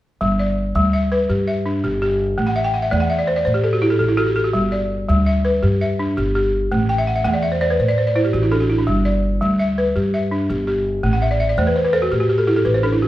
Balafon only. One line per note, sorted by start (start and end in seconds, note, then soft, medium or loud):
0.21 0.57 G3 medium
0.39 0.94 D5 medium
0.75 1.12 G3 medium
0.93 1.46 E5 medium
1.12 1.48 B4 medium
1.29 1.83 G4 medium
1.47 2.02 E5 medium
1.66 2.02 D4 medium
1.84 2.01 G4 medium
2.02 2.38 G4 medium
2.38 2.74 A3 medium
2.47 2.64 F#5 medium
2.56 2.73 E5 medium
2.64 2.82 G5 medium
2.74 2.91 F#5 medium
2.82 3.00 E5 medium
2.91 3.28 A3 medium
2.91 3.09 D5 medium
3.00 3.18 F#5 medium
3.10 3.27 E5 medium
3.19 3.35 D5 medium
3.27 3.44 C5 medium
3.36 3.54 D5 medium
3.45 3.63 C5 medium
3.54 3.72 G4 medium
3.64 3.81 A4 medium
3.73 3.90 F#4 medium
3.82 4.07 E4 medium
3.82 3.99 G4 medium
3.90 3.98 A4 medium
3.99 4.16 A4 medium
4.08 4.26 E4 medium
4.17 4.35 F#4 medium
4.17 4.34 A4 medium
4.27 4.44 G4 medium
4.36 4.53 A4 medium
4.44 4.62 F#4 medium
4.53 4.90 G3 medium
4.72 5.27 D5 medium
5.08 5.45 G3 medium
5.26 5.80 E5 medium
5.45 5.81 B4 medium
5.63 6.16 G4 medium
5.81 6.35 E5 medium
5.99 6.35 D4 medium
6.17 6.34 G4 medium
6.35 6.71 G4 medium
6.72 7.08 A3 medium
6.89 7.06 G5 medium
6.98 7.14 E5 medium
7.07 7.23 F#5 medium
7.16 7.33 E5 medium
7.24 7.61 A3 medium
7.24 7.42 F#5 medium
7.34 7.51 D5 medium
7.42 7.60 E5 medium
7.52 7.60 C5 medium
7.61 7.79 C5 medium
7.61 7.78 D5 medium
7.70 7.87 B4 medium
7.80 7.96 C5 medium
7.88 8.05 D5 medium
7.98 8.14 C5 medium
8.07 8.24 D5 medium
8.16 8.42 E4 medium
8.16 8.32 C5 medium
8.25 8.41 G4 medium
8.33 8.50 F#4 medium
8.43 8.60 E4 medium
8.52 8.68 D4 medium
8.52 8.88 A4 medium
8.60 8.77 F#4 medium
8.70 8.86 E4 medium
8.78 8.95 D4 medium
8.87 9.23 G3 medium
9.05 9.60 D5 medium
9.41 9.78 G3 medium
9.59 10.13 E5 medium
9.78 10.14 B4 medium
9.96 10.48 G4 medium
10.14 10.68 E5 medium
10.31 10.68 D4 medium
10.50 10.66 G4 medium
10.67 11.04 G4 medium
11.03 11.40 A3 medium
11.13 11.30 F#5 medium
11.22 11.39 E5 medium
11.31 11.48 D5 medium
11.40 11.57 E5 medium
11.49 11.66 D5 medium
11.58 11.94 A3 medium
11.58 11.75 C5 medium
11.67 11.83 B4 medium
11.76 11.92 C5 medium
11.85 12.01 B4 medium
11.93 12.10 A4 medium
11.93 12.29 C5 medium
12.02 12.19 F#4 medium
12.12 12.28 G4 medium
12.20 12.37 F#4 medium
12.29 12.46 G4 medium
12.38 12.55 A4 medium
12.47 12.83 E4 medium
12.47 12.64 G4 medium
12.56 12.73 A4 medium
12.65 12.82 B4 medium
12.74 12.91 C5 medium
12.83 13.00 D4 medium
12.83 13.08 A4 medium
12.93 13.08 E4 medium
13.02 13.08 F#4 medium